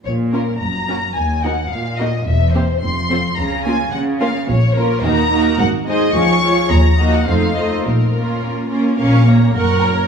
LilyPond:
<<
  \new Staff \with { instrumentName = "Violin section" } { \time 2/4 \key bes \minor \tempo 4 = 108 des''8 bes'8 bes''4 | aes''8 ges''8 f''8 ees''8 | e''8 c''8 c'''4 | bes''8 aes''8 ges''8 f''8 |
des''8 bes'8 bes''4 | ges''8 ees''8 des'''4 | bes''8. ges''16 f''8 ees''8 | bes'4 r4 |
des'''8 bes''8 des'''8 bes''8 | }
  \new Staff \with { instrumentName = "Violin section" } { \time 2/4 \key bes \minor r8 <f' bes'>8 r8 <ges' bes'>8 | r8 <ges' bes'>8 r8 <ges' bes'>8 | r8 <g' c''>8 r8 <f' c''>8 | r8 <f' bes'>8 r8 <f' bes'>8 |
r8 <f' bes'>8 <ges' bes'>8 <ges' bes'>8 | r8 <aes' c''>8 <aes' des''>8 <aes' des''>8 | r8 <ges' ees''>8 <f' c''>8 <f' c''>8 | r8 <f' bes'>4 <f' bes'>8 |
<bes' f''>8 des''8 <bes' ges''>8 <des'' bes''>8 | }
  \new Staff \with { instrumentName = "Viola section" } { \time 2/4 \key bes \minor r8 <bes des'>8 r8 <bes des'>8 | r8 <bes ees'>8 r8 <bes ees'>8 | r8 <bes c'>8 r8 <a c'>8 | r8 <bes des'>8 r8 <bes des'>8 |
r8 <bes des'>8 <bes ees'>8 <bes ees'>8 | r8 <aes ees'>8 <f f'>8 <f f'>8 | r8 <bes ees'>8 <a ees'>8 <a ees'>8 | r8 <bes des'>4 <bes des'>8 |
des'8 bes8 bes'4 | }
  \new Staff \with { instrumentName = "Cello section" } { \clef bass \time 2/4 \key bes \minor bes,4 ges,4 | ees,4 bes,4 | e,4 f,4 | des4 des4 |
bes,4 ees,4 | aes,4 des,4 | ees,4 f,4 | bes,4 bes,4 |
bes,4 ges,4 | }
  \new Staff \with { instrumentName = "Double bass section" } { \clef bass \time 2/4 \key bes \minor bes,,4 ges,,4 | ees,4 r4 | e,,4 f,,4 | des,4 r4 |
bes,,4 ees,4 | aes,,4 des,4 | ees,4 f,,4 | bes,,4 r4 |
bes,,4 ges,,4 | }
>>